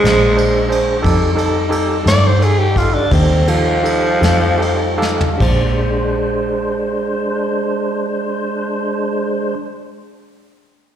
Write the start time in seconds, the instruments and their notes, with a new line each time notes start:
Already playing: tonewheel organ G#3 D4 C5, tenor saxophone G#3
0.03 fingered electric bass A#1, tine electric piano D4 G#4 C5, snare, ride
0.36 tine electric piano D4 G#4 C5, ride
0.69 tine electric piano D4 G#4 C5, ride
1.02 fingered electric bass F2, tonewheel organ G3 D#4 A4, tine electric piano D#4 G4 A4, kick, ride
1.35 tine electric piano D#4 G4 A4, ride
1.69 tine electric piano D#4 G4 A4, ride
2.03 fingered electric bass G2, tine electric piano D#4 G4 A4, ride
2.08 tenor saxophone D5, snare
2.27 tenor saxophone C5
2.38 tine electric piano D#4 G4 A4, ride
2.43 tenor saxophone G#4
2.59 tenor saxophone G4
2.74 tine electric piano D#4 G4 A4, tenor saxophone F4, kick, ride
2.94 tenor saxophone D4
3.12 fingered electric bass D#2, tenor saxophone C4, tine electric piano D#4 G4 A4, kick, ride
3.47 tenor saxophone F3, tine electric piano D#4 G4 A4, ride
3.83 tine electric piano D#4 G4 A4, ride
4.21 fingered electric bass F2, tine electric piano D#4 G4 A4, snare, ride
4.58 tine electric piano D#4 G4 A4 G5, ride
4.98 tine electric piano D#4 G4 A4 F5
5.02 snare
5.21 floor tom
5.37 fingered electric bass A#1, tine electric piano D4 G4 G#4 C5, kick, crash
5.43 tonewheel organ G#3 D4 C5